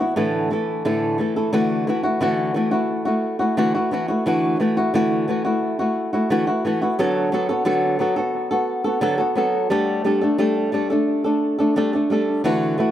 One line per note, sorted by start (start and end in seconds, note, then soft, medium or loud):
0.00 0.17 B3 soft
0.00 0.16 E4 soft
0.00 0.16 F#4 soft
0.16 0.50 A2 medium
0.16 0.50 D3 medium
0.16 0.49 E3 medium
0.16 0.50 A3 medium
0.16 0.51 E4 medium
0.16 0.51 A4 medium
0.50 0.84 E3 medium
0.50 0.85 A3 medium
0.50 0.85 E4 medium
0.50 0.85 A4 medium
0.85 1.19 A2 medium
0.85 1.19 D3 medium
0.85 1.17 E3 medium
0.85 1.18 A3 medium
0.85 1.19 E4 medium
0.85 1.20 A4 medium
1.18 1.36 E3 medium
1.18 1.36 A3 medium
1.18 1.35 E4 medium
1.18 1.35 A4 medium
1.36 1.52 E3 soft
1.36 1.52 A3 soft
1.36 1.53 E4 soft
1.36 1.53 A4 medium
1.53 1.87 D3 medium
1.53 1.86 E3 medium
1.53 1.87 A3 medium
1.53 1.88 E4 medium
1.53 1.88 F#4 medium
1.87 2.04 E3 medium
1.87 2.05 A3 medium
1.87 2.04 E4 medium
1.87 2.02 F#4 medium
2.03 2.20 A3 soft
2.03 2.20 E4 soft
2.03 2.21 F#4 medium
2.21 2.55 D3 medium
2.21 2.53 E3 medium
2.21 2.54 A3 medium
2.21 2.55 E4 medium
2.21 2.56 F#4 medium
2.54 2.72 E3 medium
2.54 2.73 A3 medium
2.54 2.71 E4 medium
2.54 2.70 F#4 medium
2.71 3.07 A3 medium
2.71 3.05 E4 medium
2.71 3.04 F#4 medium
3.05 3.40 A3 soft
3.05 3.39 E4 soft
3.05 3.38 F#4 medium
3.39 3.57 A3 soft
3.39 3.57 E4 soft
3.39 3.57 F#4 medium
3.57 3.75 D3 medium
3.57 3.75 E3 medium
3.57 3.75 A3 medium
3.57 3.75 E4 medium
3.57 3.73 F#4 medium
3.75 3.91 A3 soft
3.75 3.92 E4 medium
3.75 3.92 F#4 medium
3.91 4.09 E3 medium
3.91 4.09 A3 medium
3.91 4.09 E4 medium
3.91 4.07 F#4 medium
4.08 4.26 A3 soft
4.08 4.26 E4 medium
4.08 4.26 F#4 medium
4.26 4.60 D3 medium
4.26 4.58 E3 medium
4.26 4.59 A3 medium
4.26 4.60 E4 medium
4.26 4.61 F#4 loud
4.60 4.77 E3 medium
4.60 4.77 A3 medium
4.60 4.77 E4 medium
4.60 4.76 F#4 medium
4.77 4.94 A3 soft
4.77 4.94 E4 medium
4.77 4.94 F#4 medium
4.94 5.28 D3 medium
4.94 5.27 E3 medium
4.94 5.28 A3 medium
4.94 5.28 E4 medium
4.94 5.29 F#4 medium
5.28 5.45 E3 medium
5.28 5.46 A3 medium
5.28 5.45 E4 medium
5.28 5.43 F#4 medium
5.45 5.80 A3 soft
5.45 5.79 E4 medium
5.45 5.78 F#4 medium
5.79 6.14 A3 soft
5.79 6.13 E4 medium
5.79 6.12 F#4 medium
6.13 6.30 A3 soft
6.13 6.30 E4 medium
6.13 6.30 F#4 medium
6.30 6.48 D3 medium
6.30 6.48 E3 medium
6.30 6.48 A3 medium
6.30 6.47 E4 medium
6.30 6.46 F#4 loud
6.47 6.64 A3 soft
6.47 6.65 E4 medium
6.47 6.65 F#4 medium
6.65 6.82 E3 medium
6.65 6.82 A3 medium
6.65 6.82 E4 medium
6.65 6.80 F#4 medium
6.82 6.99 A3 soft
6.82 6.99 E4 medium
6.82 6.99 F#4 medium
6.99 7.33 D3 medium
6.99 7.31 F#3 medium
6.99 7.32 B3 medium
6.99 7.32 F#4 medium
6.99 7.33 A4 loud
7.32 7.50 F#3 medium
7.32 7.50 B3 medium
7.32 7.49 F#4 medium
7.32 7.48 A4 medium
7.49 7.65 B3 medium
7.49 7.65 F#4 medium
7.49 7.65 A4 medium
7.65 8.00 D3 medium
7.65 7.98 F#3 medium
7.65 7.99 B3 medium
7.65 7.99 F#4 medium
7.65 8.00 A4 medium
7.99 8.17 F#3 medium
7.99 8.18 B3 medium
7.99 8.17 F#4 medium
7.99 8.15 A4 medium
8.16 8.52 B3 medium
8.16 8.51 F#4 medium
8.16 8.50 A4 medium
8.51 8.86 B3 soft
8.51 8.85 F#4 medium
8.51 8.83 A4 medium
8.84 9.01 B3 soft
8.84 9.01 F#4 medium
8.84 9.02 A4 medium
9.01 9.20 D3 medium
9.01 9.20 F#3 medium
9.01 9.19 B3 medium
9.01 9.18 F#4 medium
9.01 9.17 A4 loud
9.18 9.35 B3 medium
9.18 9.36 F#4 medium
9.18 9.36 A4 medium
9.35 9.70 F#3 medium
9.35 9.70 B3 medium
9.35 9.71 F#4 medium
9.35 9.70 A4 medium
9.70 10.03 G3 medium
9.70 10.04 A3 medium
9.70 10.05 D4 medium
9.70 10.06 A4 medium
10.04 10.22 G3 medium
10.04 10.23 A3 medium
10.04 10.22 D4 medium
10.04 10.20 A4 medium
10.21 10.38 A3 soft
10.21 10.38 D4 medium
10.21 10.38 A4 medium
10.38 10.71 G3 medium
10.38 10.72 A3 medium
10.38 10.73 D4 medium
10.38 10.73 A4 medium
10.72 10.90 G3 medium
10.72 10.91 A3 medium
10.72 10.90 D4 medium
10.72 10.89 A4 medium
10.90 11.26 A3 soft
10.90 11.24 D4 medium
10.90 11.23 A4 medium
11.24 11.60 A3 soft
11.24 11.59 D4 medium
11.24 11.57 A4 medium
11.59 11.75 A3 soft
11.59 11.76 D4 medium
11.59 11.76 A4 medium
11.76 11.94 G3 medium
11.76 11.94 A3 medium
11.76 11.93 D4 medium
11.76 11.92 A4 medium
11.93 12.10 A3 soft
11.93 12.11 D4 medium
11.93 12.11 A4 medium
12.10 12.44 G3 medium
12.10 12.44 A3 medium
12.10 12.45 D4 medium
12.10 12.45 A4 medium
12.44 12.79 D3 medium
12.44 12.76 E3 medium
12.44 12.77 A3 medium
12.44 12.78 E4 medium
12.44 12.79 F#4 medium
12.78 12.91 E3 medium
12.78 12.91 A3 medium
12.78 12.91 E4 medium
12.78 12.91 F#4 medium